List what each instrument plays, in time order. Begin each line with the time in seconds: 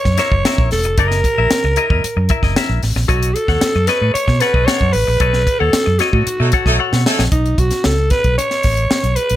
Already playing: alto saxophone C#5
0.05 fingered electric bass F#2, kick, snare
0.18 clean electric guitar E4 A#4 E5, alto saxophone C#5, snare, closed hi-hat
0.32 fingered electric bass F#1, muted clean electric guitar stroke, kick
0.45 clean electric guitar E4 A#4 E5, snare, closed hi-hat
0.58 fingered electric bass A#1, kick
0.71 fingered electric bass E1, alto saxophone A4, muted clean electric guitar stroke, snare, open hi-hat
0.84 fingered electric bass F1, muted clean electric guitar stroke, closed hi-hat
0.98 fingered electric bass F#1, clean electric guitar E4 A#4 D#5, alto saxophone A#4, kick, closed hi-hat
1.11 snare, closed hi-hat
1.24 muted clean electric guitar stroke, kick, closed hi-hat
1.38 fingered electric bass A#1, clean electric guitar E4 A#4 E5
1.51 muted fingered electric bass stroke, snare, closed hi-hat
1.64 fingered electric bass C#2, muted clean electric guitar stroke
1.76 clean electric guitar E4 A#4 D#5, closed hi-hat
1.90 fingered electric bass E2, clean electric guitar E4 A#4 D#5, kick
2.04 muted clean electric guitar stroke, muted fingered electric bass stroke, closed hi-hat
2.17 fingered electric bass F#2, muted clean electric guitar stroke
2.29 clean electric guitar E4 A#4 E5, kick, closed hi-hat
2.43 fingered electric bass F#1, clean electric guitar E4 A#4 D#5, kick, snare
2.56 clean electric guitar E4 A#4 E5, snare, closed hi-hat
2.69 fingered electric bass A#1
2.83 fingered electric bass A1, muted clean electric guitar stroke, snare, open hi-hat
2.96 fingered electric bass A#1, muted clean electric guitar stroke, snare
3.08 fingered electric bass B1, alto saxophone F#4, clean electric guitar A4 C#5 D#5, kick, closed hi-hat
3.23 closed hi-hat
3.35 alto saxophone A4, muted clean electric guitar stroke, closed hi-hat
3.48 fingered electric bass D#2, clean electric guitar A4 C#5 F#5, kick, snare
3.61 muted fingered electric bass stroke, muted clean electric guitar stroke, snare, closed hi-hat
3.75 fingered electric bass F#2, muted clean electric guitar stroke
3.87 clean electric guitar A4 C#5 D#5, alto saxophone B4, snare, closed hi-hat
4.01 fingered electric bass A2, clean electric guitar A4 C#5 D#5
4.14 alto saxophone C#5, muted clean electric guitar stroke, muted fingered electric bass stroke, closed hi-hat
4.28 fingered electric bass B2, muted clean electric guitar stroke, kick, snare
4.40 clean electric guitar A4 C#5 F#5, alto saxophone B4, snare, closed hi-hat
4.54 fingered electric bass B1, clean electric guitar A4 C#5 D#5, kick
4.66 clean electric guitar A4 C#5 F#5, alto saxophone C#5, snare, closed hi-hat
4.81 fingered electric bass F#2, kick
4.93 fingered electric bass A1, alto saxophone B4, muted clean electric guitar stroke, open hi-hat
5.07 fingered electric bass A#1, muted clean electric guitar stroke
5.20 fingered electric bass B1, clean electric guitar A4 C#5 D#5, kick, closed hi-hat
5.33 snare
5.47 muted clean electric guitar stroke, kick, closed hi-hat
5.59 fingered electric bass D#2, alto saxophone A4, clean electric guitar A4 C#5 F#5
5.73 muted clean electric guitar stroke, muted fingered electric bass stroke, snare, closed hi-hat
5.86 fingered electric bass F#2, muted clean electric guitar stroke
5.99 alto saxophone F#4, clean electric guitar A4 C#5 D#5, snare, closed hi-hat
6.13 fingered electric bass A2, alto saxophone F#4, clean electric guitar A4 C#5 D#5, kick
6.27 muted fingered electric bass stroke, muted clean electric guitar stroke, closed hi-hat
6.40 fingered electric bass B2, horn section F#3 A3 D#4 A4, muted clean electric guitar stroke
6.52 clean electric guitar A4 C#5 F#5, kick, closed hi-hat
6.66 fingered electric bass B1, horn section F#3 A3 D#4 A4, clean electric guitar A4 C#5 D#5, kick, snare
6.79 clean electric guitar A4 C#5 F#5
6.93 fingered electric bass B2, snare
7.06 horn section F#3 A3 D#4 A4, muted clean electric guitar stroke, snare
7.19 fingered electric bass A#1, muted clean electric guitar stroke, snare
7.32 fingered electric bass B1, alto saxophone D#4, kick, closed hi-hat
7.46 closed hi-hat
7.58 fingered electric bass B1, alto saxophone F#4, kick, closed hi-hat
7.71 snare, closed hi-hat
7.84 fingered electric bass C#2, alto saxophone A4, snare
8.10 alto saxophone B4, kick, snare, closed hi-hat
8.24 fingered electric bass B1, kick, closed hi-hat
8.38 alto saxophone C#5, closed hi-hat
8.51 snare, closed hi-hat
8.63 fingered electric bass A1, kick, snare, open hi-hat
8.77 closed hi-hat
8.91 muted fingered electric bass stroke, snare
9.04 fingered electric bass B1, closed hi-hat
9.16 alto saxophone B4, closed hi-hat
9.30 fingered electric bass A#1, closed hi-hat